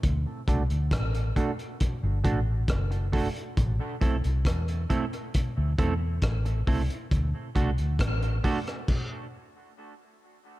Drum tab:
CC |----------------|----------------|--------x-------|
HH |x-xxxxxxx-x-xxox|x-xxxxxxx-x-xxox|x-xxxxox--------|
SD |----r-------r---|----r-------r---|----r--r--------|
BD |o-o-o-o-o-o-o-o-|o-o-o-o-o-o-o-o-|o-o-o-o-o-------|